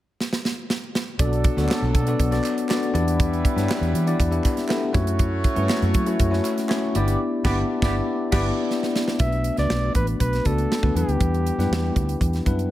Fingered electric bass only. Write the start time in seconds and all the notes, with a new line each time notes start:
1.19 B1
1.57 D2
1.82 B1
1.95 B2
2.19 B1
2.94 E2
3.56 G2
3.81 E2
3.93 E3
4.19 E2
4.95 F#2
5.57 G2
5.82 F#2
5.94 F#3
6.19 F#2
6.95 G1
7.45 G1
7.82 G1
8.32 G1
9.20 B1
9.58 C#2
9.70 B1
9.95 A1
10.20 B1
10.46 C#2
10.83 D2
10.95 E2
11.08 D2
11.21 E2
11.58 F#2
11.71 E2
11.96 D2
12.21 E2
12.46 F#2